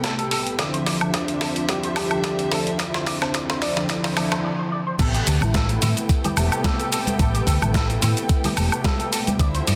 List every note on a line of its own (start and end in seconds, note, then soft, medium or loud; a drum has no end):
0.00 0.55 C3 medium
0.00 0.56 A3 medium
0.00 0.56 B3 medium
0.00 0.56 G4 medium
0.00 0.55 A4 medium
0.00 0.15 A4 loud
0.00 0.55 G5 medium
0.00 0.55 B5 medium
0.00 kick loud
0.00 snare medium
0.00 closed hi-hat medium
0.19 0.25 A4 medium
0.19 closed hi-hat soft
0.31 0.39 A4 loud
0.31 open hi-hat loud
0.47 closed hi-hat soft
0.58 0.98 D3 medium
0.58 0.98 F3 medium
0.58 4.41 F3 medium
0.58 0.98 C4 medium
0.58 4.41 D4 medium
0.58 0.98 E4 medium
0.58 4.41 C5 medium
0.58 0.66 D5 medium
0.58 4.41 E5 medium
0.58 kick loud
0.58 snare medium
0.58 closed hi-hat medium
0.74 0.80 C5 medium
0.74 closed hi-hat soft
0.86 0.94 D5 medium
0.86 snare medium
0.86 open hi-hat loud
1.00 1.66 D3 medium
1.00 1.67 F3 medium
1.00 1.67 C4 medium
1.00 1.67 D4 medium
1.00 closed hi-hat soft
1.00 high woodblock medium
1.14 1.25 D5 medium
1.14 kick loud
1.14 snare medium
1.14 closed hi-hat medium
1.28 closed hi-hat soft
1.41 1.49 A4 medium
1.41 snare medium
1.41 open hi-hat loud
1.56 closed hi-hat soft
1.68 2.07 D3 medium
1.68 2.08 F3 medium
1.68 2.08 C4 medium
1.68 2.08 E4 medium
1.68 1.88 G4 loud
1.68 1.77 D5 medium
1.68 kick loud
1.68 snare medium
1.68 closed hi-hat medium
1.83 1.90 C5 medium
1.83 closed hi-hat soft
1.96 2.49 G4 medium
1.96 2.04 D5 medium
1.96 snare medium
1.96 open hi-hat loud
1.96 high woodblock medium
2.10 2.76 D3 medium
2.10 2.77 F3 medium
2.10 2.77 C4 medium
2.10 2.77 D4 medium
2.10 closed hi-hat soft
2.10 high woodblock medium
2.24 2.35 D5 medium
2.24 kick loud
2.24 snare medium
2.24 closed hi-hat medium
2.39 closed hi-hat soft
2.51 2.71 A4 medium
2.51 2.59 A4 medium
2.51 snare medium
2.51 open hi-hat loud
2.67 closed hi-hat soft
2.79 3.18 D3 medium
2.79 3.18 F3 medium
2.79 3.18 C4 medium
2.79 3.18 E4 medium
2.79 2.87 D5 medium
2.79 kick loud
2.79 snare medium
2.79 closed hi-hat medium
2.94 3.01 C5 medium
2.94 snare medium
2.94 closed hi-hat soft
3.06 3.14 D5 medium
3.06 kick medium
3.06 snare loud
3.06 open hi-hat loud
3.21 3.32 D3 medium
3.21 3.32 F3 medium
3.21 3.32 C4 medium
3.21 3.33 D4 medium
3.21 3.39 C5 medium
3.21 snare medium
3.21 closed hi-hat soft
3.21 high woodblock medium
3.34 3.73 D3 medium
3.34 3.73 F3 medium
3.34 3.73 C4 medium
3.34 3.73 E4 medium
3.34 3.42 D5 medium
3.34 kick loud
3.34 snare medium
3.34 closed hi-hat medium
3.50 3.56 C5 medium
3.50 snare medium
3.50 closed hi-hat soft
3.62 3.81 D5 medium
3.62 3.70 D5 medium
3.62 snare loud
3.62 open hi-hat loud
3.76 3.87 D3 medium
3.76 3.87 F3 medium
3.76 3.87 C4 medium
3.76 3.88 D4 loud
3.76 snare medium
3.76 closed hi-hat soft
3.89 4.14 D3 medium
3.89 4.15 F3 medium
3.89 4.15 C4 medium
3.89 4.15 E4 medium
3.89 3.97 D5 medium
3.89 kick loud
3.89 snare loud
3.89 closed hi-hat medium
4.04 4.11 C5 medium
4.04 snare medium
4.04 open hi-hat medium
4.17 4.42 D3 medium
4.17 4.42 F3 medium
4.17 4.43 C4 medium
4.17 4.43 E4 medium
4.17 4.24 D5 medium
4.17 snare loud
4.17 open hi-hat loud
4.17 high woodblock medium
4.32 4.38 C5 medium
4.32 snare medium
4.32 closed hi-hat soft
4.32 high woodblock medium
4.44 4.52 D5 medium
4.59 4.65 C5 medium
4.72 4.79 D5 medium
4.87 4.93 C5 medium
4.99 5.19 A1 loud
4.99 5.38 C3 medium
4.99 5.38 A3 medium
4.99 5.38 B3 medium
4.99 5.39 G4 medium
4.99 5.07 A4 medium
4.99 9.36 A4 medium
4.99 9.36 B4 medium
4.99 9.36 G5 medium
4.99 kick loud
4.99 closed hi-hat medium
4.99 crash loud
4.99 shaker soft
5.14 5.21 G4 medium
5.14 closed hi-hat soft
5.14 shaker soft
5.27 5.37 D2 medium
5.27 5.34 A4 medium
5.27 open hi-hat loud
5.27 shaker medium
5.41 5.76 A1 loud
5.41 6.33 C3 medium
5.41 6.34 A3 medium
5.41 6.34 B3 medium
5.41 6.34 E4 medium
5.41 closed hi-hat soft
5.41 high conga medium
5.41 low conga loud
5.41 high woodblock medium
5.41 shaker soft
5.54 5.65 A4 loud
5.54 kick loud
5.54 snare loud
5.54 closed hi-hat medium
5.54 shaker soft
5.69 closed hi-hat soft
5.69 shaker soft
5.82 5.92 A2 medium
5.82 5.89 E4 loud
5.82 open hi-hat loud
5.82 high conga medium
5.82 low conga medium
5.82 shaker medium
5.97 closed hi-hat soft
5.97 shaker soft
6.09 kick loud
6.09 closed hi-hat loud
6.09 shaker soft
6.24 6.31 G4 medium
6.24 closed hi-hat soft
6.24 high conga medium
6.24 low conga medium
6.24 shaker soft
6.36 6.47 E1 medium
6.36 7.16 C3 loud
6.36 7.16 A3 medium
6.36 7.17 B3 medium
6.36 7.17 G4 loud
6.36 6.42 A4 medium
6.36 open hi-hat loud
6.36 high woodblock medium
6.36 shaker medium
6.52 closed hi-hat soft
6.52 high woodblock medium
6.52 shaker soft
6.64 6.76 A4 loud
6.64 kick loud
6.64 snare loud
6.64 closed hi-hat loud
6.64 high conga medium
6.64 shaker soft
6.80 6.86 A4 medium
6.80 closed hi-hat soft
6.80 shaker soft
6.92 6.99 A4 loud
6.92 open hi-hat loud
6.92 shaker medium
7.07 closed hi-hat soft
7.07 high conga loud
7.07 shaker soft
7.19 7.39 A1 loud
7.19 7.58 C3 medium
7.19 7.58 A3 medium
7.19 7.58 B3 medium
7.19 7.58 G4 medium
7.19 7.27 A4 medium
7.19 kick loud
7.19 closed hi-hat loud
7.19 shaker soft
7.34 7.41 G4 medium
7.34 closed hi-hat soft
7.34 shaker soft
7.47 7.57 D2 loud
7.47 7.54 A4 medium
7.47 kick medium
7.47 open hi-hat loud
7.47 shaker medium
7.61 7.96 A1 loud
7.61 8.54 C3 medium
7.61 8.54 A3 medium
7.61 8.54 B3 medium
7.61 8.55 E4 medium
7.61 closed hi-hat soft
7.61 high conga loud
7.61 low conga loud
7.61 high woodblock medium
7.61 shaker soft
7.74 7.86 A4 loud
7.74 kick loud
7.74 snare loud
7.74 closed hi-hat medium
7.74 shaker soft
7.90 closed hi-hat soft
7.90 shaker soft
8.02 8.13 A2 medium
8.02 8.09 E4 loud
8.02 open hi-hat loud
8.02 low conga medium
8.02 shaker medium
8.17 closed hi-hat soft
8.17 shaker soft
8.29 kick loud
8.29 closed hi-hat medium
8.29 shaker soft
8.44 8.51 G4 medium
8.44 open hi-hat medium
8.44 high conga loud
8.44 low conga medium
8.44 shaker soft
8.56 8.68 E1 loud
8.56 9.36 C3 medium
8.56 9.36 A3 medium
8.56 9.37 B3 medium
8.56 9.37 G4 medium
8.56 8.61 A4 medium
8.56 open hi-hat loud
8.56 high woodblock medium
8.56 shaker medium
8.72 closed hi-hat soft
8.72 high woodblock medium
8.72 shaker soft
8.84 8.96 A4 loud
8.84 kick loud
8.84 snare loud
8.84 closed hi-hat medium
8.84 high conga medium
8.84 shaker soft
8.99 9.06 A4 medium
8.99 closed hi-hat soft
8.99 shaker soft
9.12 9.20 A4 loud
9.12 open hi-hat loud
9.12 shaker medium
9.27 closed hi-hat soft
9.27 high conga loud
9.27 shaker soft
9.39 9.60 D2 loud
9.39 9.75 D3 medium
9.39 9.75 F3 medium
9.39 9.75 C4 medium
9.39 9.75 D4 medium
9.39 9.75 E4 medium
9.39 9.75 C5 medium
9.39 9.47 D5 medium
9.39 9.75 E5 loud
9.39 kick loud
9.39 closed hi-hat medium
9.39 shaker soft
9.55 9.61 C5 medium
9.55 closed hi-hat soft
9.55 shaker soft
9.67 9.75 G2 medium
9.67 9.75 D5 medium
9.67 open hi-hat loud
9.67 shaker medium